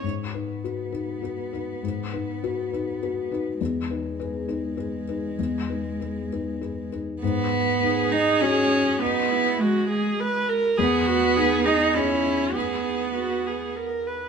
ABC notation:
X:1
M:3/4
L:1/8
Q:1/4=101
K:G#m
V:1 name="Viola"
z6 | z6 | z6 | z6 |
z2 G4 | D E F G B A | G F G G E2 | G2 F G A B |]
V:2 name="Felt piano"
G,, [DB] [FB] [DB] [FB] [DB] | G,, [DB] [FB] [DB] [FB] [DB] | E,, [DB] [GB] [DB] [GB] [DB] | E,, [DB] [GB] [DB] [GB] [DB] |
G,,2 D2 [FG]2- | [FG]6 | E,,2 D2 [EG]2- | [EG]6 |]
V:3 name="Cello"
B,6- | B,6 | G,6- | G,4- G, z |
B,3 D C2 | B,2 G,3 z | B,3 D C2 | B,4 z2 |]